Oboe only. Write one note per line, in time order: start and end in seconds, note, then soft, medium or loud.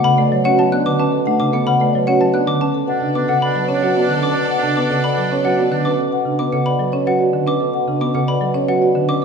2.89 3.08 D4 soft
3.17 3.36 D4 medium
3.45 3.65 D4 medium
3.74 3.93 D4 medium
4.01 4.21 D4 medium
4.29 4.49 D4 medium
4.58 4.77 D4 medium
4.85 5.05 D4 medium
5.14 5.34 D4 medium
5.43 5.62 D4 soft
5.70 5.90 D4 soft